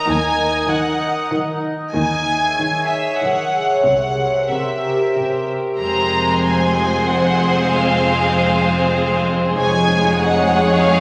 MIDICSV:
0, 0, Header, 1, 8, 480
1, 0, Start_track
1, 0, Tempo, 626959
1, 50, Time_signature, 3, 2, 24, 8
1, 2450, Tempo, 647948
1, 4850, Tempo, 628272
1, 8335, End_track
2, 0, Start_track
2, 0, Title_t, "Violin section"
2, 0, Program_c, 0, 48
2, 0, Note_on_c, 0, 82, 31
2, 0, Note_on_c, 0, 87, 34
2, 1219, Note_off_c, 0, 87, 0
2, 1220, Note_off_c, 0, 82, 0
2, 4380, Note_on_c, 0, 84, 26
2, 4382, Note_on_c, 0, 80, 26
2, 6511, Note_off_c, 0, 84, 0
2, 6990, Note_off_c, 0, 80, 0
2, 8335, End_track
3, 0, Start_track
3, 0, Title_t, "Violin section"
3, 0, Program_c, 1, 48
3, 47, Note_on_c, 1, 80, 63
3, 527, Note_off_c, 1, 80, 0
3, 532, Note_on_c, 1, 78, 51
3, 1010, Note_off_c, 1, 78, 0
3, 1490, Note_on_c, 1, 80, 59
3, 2175, Note_off_c, 1, 80, 0
3, 2208, Note_on_c, 1, 76, 45
3, 2452, Note_off_c, 1, 76, 0
3, 2452, Note_on_c, 1, 78, 39
3, 2928, Note_off_c, 1, 78, 0
3, 2937, Note_on_c, 1, 78, 40
3, 3408, Note_off_c, 1, 78, 0
3, 3414, Note_on_c, 1, 76, 29
3, 4140, Note_off_c, 1, 76, 0
3, 4383, Note_on_c, 1, 82, 52
3, 4823, Note_off_c, 1, 82, 0
3, 4851, Note_on_c, 1, 80, 41
3, 5333, Note_on_c, 1, 78, 46
3, 5335, Note_off_c, 1, 80, 0
3, 5818, Note_off_c, 1, 78, 0
3, 5822, Note_on_c, 1, 77, 51
3, 6998, Note_off_c, 1, 77, 0
3, 7255, Note_on_c, 1, 80, 63
3, 7704, Note_off_c, 1, 80, 0
3, 7738, Note_on_c, 1, 78, 58
3, 8211, Note_on_c, 1, 77, 65
3, 8213, Note_off_c, 1, 78, 0
3, 8335, Note_off_c, 1, 77, 0
3, 8335, End_track
4, 0, Start_track
4, 0, Title_t, "Ambient pad"
4, 0, Program_c, 2, 92
4, 0, Note_on_c, 2, 63, 47
4, 0, Note_on_c, 2, 70, 47
4, 0, Note_on_c, 2, 75, 46
4, 1483, Note_on_c, 2, 73, 43
4, 1485, Note_on_c, 2, 76, 48
4, 1486, Note_off_c, 2, 63, 0
4, 1486, Note_on_c, 2, 68, 45
4, 1487, Note_off_c, 2, 75, 0
4, 1488, Note_off_c, 2, 70, 0
4, 2928, Note_on_c, 2, 70, 43
4, 2928, Note_on_c, 2, 72, 42
4, 2930, Note_on_c, 2, 67, 42
4, 2932, Note_off_c, 2, 73, 0
4, 2933, Note_off_c, 2, 76, 0
4, 2934, Note_off_c, 2, 68, 0
4, 4371, Note_off_c, 2, 72, 0
4, 4377, Note_off_c, 2, 70, 0
4, 4377, Note_on_c, 2, 68, 47
4, 4378, Note_off_c, 2, 67, 0
4, 4383, Note_on_c, 2, 72, 45
4, 7227, Note_off_c, 2, 68, 0
4, 7230, Note_off_c, 2, 72, 0
4, 7259, Note_on_c, 2, 75, 48
4, 7264, Note_on_c, 2, 73, 49
4, 7265, Note_on_c, 2, 68, 46
4, 8335, Note_off_c, 2, 68, 0
4, 8335, Note_off_c, 2, 73, 0
4, 8335, Note_off_c, 2, 75, 0
4, 8335, End_track
5, 0, Start_track
5, 0, Title_t, "Violin section"
5, 0, Program_c, 3, 48
5, 4380, Note_on_c, 3, 72, 39
5, 4382, Note_on_c, 3, 68, 38
5, 7229, Note_off_c, 3, 72, 0
5, 7230, Note_off_c, 3, 68, 0
5, 7254, Note_on_c, 3, 68, 53
5, 7255, Note_on_c, 3, 73, 51
5, 8335, Note_off_c, 3, 68, 0
5, 8335, Note_off_c, 3, 73, 0
5, 8335, End_track
6, 0, Start_track
6, 0, Title_t, "Viola section"
6, 0, Program_c, 4, 48
6, 4379, Note_on_c, 4, 56, 38
6, 4381, Note_on_c, 4, 60, 38
6, 7228, Note_off_c, 4, 56, 0
6, 7229, Note_off_c, 4, 60, 0
6, 7254, Note_on_c, 4, 56, 48
6, 7254, Note_on_c, 4, 63, 48
6, 8335, Note_off_c, 4, 56, 0
6, 8335, Note_off_c, 4, 63, 0
6, 8335, End_track
7, 0, Start_track
7, 0, Title_t, "Cello section"
7, 0, Program_c, 5, 48
7, 55, Note_on_c, 5, 51, 50
7, 453, Note_off_c, 5, 51, 0
7, 531, Note_on_c, 5, 51, 45
7, 932, Note_off_c, 5, 51, 0
7, 1007, Note_on_c, 5, 51, 45
7, 1408, Note_off_c, 5, 51, 0
7, 1488, Note_on_c, 5, 51, 47
7, 1886, Note_off_c, 5, 51, 0
7, 1968, Note_on_c, 5, 51, 38
7, 2373, Note_off_c, 5, 51, 0
7, 2453, Note_on_c, 5, 51, 35
7, 2857, Note_off_c, 5, 51, 0
7, 2935, Note_on_c, 5, 48, 33
7, 3339, Note_off_c, 5, 48, 0
7, 3420, Note_on_c, 5, 48, 29
7, 3823, Note_off_c, 5, 48, 0
7, 3901, Note_on_c, 5, 48, 28
7, 4304, Note_off_c, 5, 48, 0
7, 4382, Note_on_c, 5, 41, 34
7, 7230, Note_off_c, 5, 41, 0
7, 7258, Note_on_c, 5, 41, 43
7, 8335, Note_off_c, 5, 41, 0
7, 8335, End_track
8, 0, Start_track
8, 0, Title_t, "Double bass section"
8, 0, Program_c, 6, 48
8, 55, Note_on_c, 6, 39, 51
8, 453, Note_off_c, 6, 39, 0
8, 1490, Note_on_c, 6, 39, 46
8, 1887, Note_off_c, 6, 39, 0
8, 2935, Note_on_c, 6, 36, 31
8, 3339, Note_off_c, 6, 36, 0
8, 4379, Note_on_c, 6, 29, 35
8, 7228, Note_off_c, 6, 29, 0
8, 7258, Note_on_c, 6, 29, 46
8, 8335, Note_off_c, 6, 29, 0
8, 8335, End_track
0, 0, End_of_file